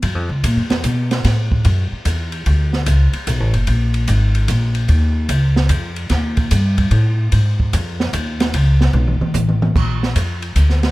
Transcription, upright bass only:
0, 0, Header, 1, 3, 480
1, 0, Start_track
1, 0, Tempo, 405132
1, 43, Time_signature, 3, 2, 24, 8
1, 12930, End_track
2, 0, Start_track
2, 0, Title_t, "Upright bass"
2, 0, Program_c, 0, 32
2, 32, Note_on_c, 0, 42, 86
2, 174, Note_off_c, 0, 42, 0
2, 174, Note_on_c, 0, 41, 52
2, 338, Note_off_c, 0, 41, 0
2, 345, Note_on_c, 0, 37, 62
2, 502, Note_off_c, 0, 37, 0
2, 517, Note_on_c, 0, 46, 94
2, 667, Note_on_c, 0, 42, 54
2, 685, Note_off_c, 0, 46, 0
2, 822, Note_off_c, 0, 42, 0
2, 829, Note_on_c, 0, 41, 65
2, 984, Note_off_c, 0, 41, 0
2, 996, Note_on_c, 0, 47, 82
2, 1465, Note_off_c, 0, 47, 0
2, 1473, Note_on_c, 0, 45, 86
2, 1943, Note_off_c, 0, 45, 0
2, 1955, Note_on_c, 0, 42, 91
2, 2255, Note_off_c, 0, 42, 0
2, 2433, Note_on_c, 0, 40, 82
2, 2903, Note_off_c, 0, 40, 0
2, 2919, Note_on_c, 0, 38, 94
2, 3386, Note_off_c, 0, 38, 0
2, 3396, Note_on_c, 0, 37, 84
2, 3696, Note_off_c, 0, 37, 0
2, 3875, Note_on_c, 0, 35, 86
2, 4025, Note_off_c, 0, 35, 0
2, 4025, Note_on_c, 0, 33, 60
2, 4182, Note_off_c, 0, 33, 0
2, 4189, Note_on_c, 0, 30, 65
2, 4344, Note_off_c, 0, 30, 0
2, 4355, Note_on_c, 0, 34, 88
2, 4824, Note_off_c, 0, 34, 0
2, 4835, Note_on_c, 0, 32, 89
2, 5304, Note_off_c, 0, 32, 0
2, 5310, Note_on_c, 0, 34, 88
2, 5781, Note_off_c, 0, 34, 0
2, 5786, Note_on_c, 0, 39, 88
2, 6259, Note_off_c, 0, 39, 0
2, 6266, Note_on_c, 0, 37, 88
2, 6738, Note_off_c, 0, 37, 0
2, 6748, Note_on_c, 0, 41, 84
2, 7219, Note_off_c, 0, 41, 0
2, 7229, Note_on_c, 0, 39, 84
2, 7700, Note_off_c, 0, 39, 0
2, 7714, Note_on_c, 0, 43, 90
2, 8180, Note_off_c, 0, 43, 0
2, 8187, Note_on_c, 0, 45, 92
2, 8659, Note_off_c, 0, 45, 0
2, 8677, Note_on_c, 0, 44, 86
2, 9144, Note_off_c, 0, 44, 0
2, 9161, Note_on_c, 0, 41, 100
2, 9626, Note_off_c, 0, 41, 0
2, 9633, Note_on_c, 0, 39, 95
2, 10102, Note_off_c, 0, 39, 0
2, 10118, Note_on_c, 0, 37, 89
2, 10576, Note_off_c, 0, 37, 0
2, 10583, Note_on_c, 0, 35, 93
2, 10887, Note_off_c, 0, 35, 0
2, 11066, Note_on_c, 0, 33, 92
2, 11538, Note_off_c, 0, 33, 0
2, 11557, Note_on_c, 0, 34, 78
2, 12024, Note_off_c, 0, 34, 0
2, 12032, Note_on_c, 0, 41, 85
2, 12501, Note_off_c, 0, 41, 0
2, 12507, Note_on_c, 0, 38, 75
2, 12930, Note_off_c, 0, 38, 0
2, 12930, End_track
3, 0, Start_track
3, 0, Title_t, "Muted upright bass strokes"
3, 2276, Note_on_c, 9, 29, 43
3, 2395, Note_off_c, 9, 29, 0
3, 3711, Note_on_c, 9, 29, 43
3, 3829, Note_off_c, 9, 29, 0
3, 10911, Note_on_c, 9, 29, 41
3, 11029, Note_off_c, 9, 29, 0
3, 12930, End_track
0, 0, End_of_file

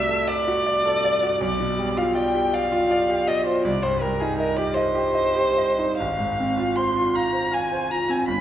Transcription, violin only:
0, 0, Header, 1, 2, 480
1, 0, Start_track
1, 0, Tempo, 750000
1, 904, Time_signature, 6, 3, 24, 8
1, 3292, Tempo, 836820
1, 3772, Tempo, 767263
1, 5291, End_track
2, 0, Start_track
2, 0, Title_t, "Violin"
2, 0, Program_c, 0, 40
2, 0, Note_on_c, 0, 76, 91
2, 180, Note_on_c, 0, 74, 98
2, 189, Note_off_c, 0, 76, 0
2, 906, Note_off_c, 0, 74, 0
2, 917, Note_on_c, 0, 74, 77
2, 1265, Note_on_c, 0, 77, 68
2, 1274, Note_off_c, 0, 74, 0
2, 1376, Note_off_c, 0, 77, 0
2, 1380, Note_on_c, 0, 79, 74
2, 1626, Note_on_c, 0, 77, 84
2, 1636, Note_off_c, 0, 79, 0
2, 2096, Note_on_c, 0, 75, 78
2, 2105, Note_off_c, 0, 77, 0
2, 2211, Note_off_c, 0, 75, 0
2, 2215, Note_on_c, 0, 72, 66
2, 2331, Note_off_c, 0, 72, 0
2, 2338, Note_on_c, 0, 74, 86
2, 2449, Note_on_c, 0, 72, 74
2, 2459, Note_off_c, 0, 74, 0
2, 2567, Note_on_c, 0, 70, 65
2, 2577, Note_off_c, 0, 72, 0
2, 2690, Note_on_c, 0, 68, 68
2, 2700, Note_off_c, 0, 70, 0
2, 2800, Note_off_c, 0, 68, 0
2, 2804, Note_on_c, 0, 70, 67
2, 2923, Note_on_c, 0, 74, 72
2, 2933, Note_off_c, 0, 70, 0
2, 3033, Note_on_c, 0, 72, 93
2, 3043, Note_off_c, 0, 74, 0
2, 3762, Note_off_c, 0, 72, 0
2, 3765, Note_on_c, 0, 77, 75
2, 4261, Note_on_c, 0, 84, 71
2, 4270, Note_off_c, 0, 77, 0
2, 4504, Note_on_c, 0, 82, 78
2, 4514, Note_off_c, 0, 84, 0
2, 4745, Note_on_c, 0, 80, 75
2, 4755, Note_off_c, 0, 82, 0
2, 4980, Note_on_c, 0, 82, 71
2, 4989, Note_off_c, 0, 80, 0
2, 5101, Note_on_c, 0, 80, 64
2, 5110, Note_off_c, 0, 82, 0
2, 5207, Note_off_c, 0, 80, 0
2, 5211, Note_on_c, 0, 83, 74
2, 5291, Note_off_c, 0, 83, 0
2, 5291, End_track
0, 0, End_of_file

